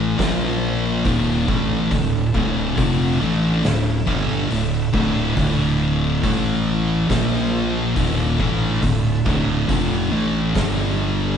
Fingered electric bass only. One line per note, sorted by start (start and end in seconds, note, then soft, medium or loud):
0.00 0.15 A1 medium
0.19 1.01 A#1 loud
1.05 1.46 D#1 loud
1.48 1.89 A1 loud
1.91 2.32 D1 medium
2.35 2.75 D1 loud
2.78 3.18 F1 loud
3.22 3.62 A1 loud
3.65 4.05 D1 medium
4.07 4.48 G1 loud
4.51 4.91 D1 medium
4.94 5.34 D1 loud
5.37 6.19 D1 loud
6.24 7.06 A1 loud
7.10 7.92 A#1 loud
7.96 8.36 D#1 loud
8.40 8.80 A1 loud
8.83 9.23 D1 medium
9.26 9.66 D1 medium
9.69 10.09 F1 medium
10.12 10.52 A1 loud
10.56 11.37 G1 loud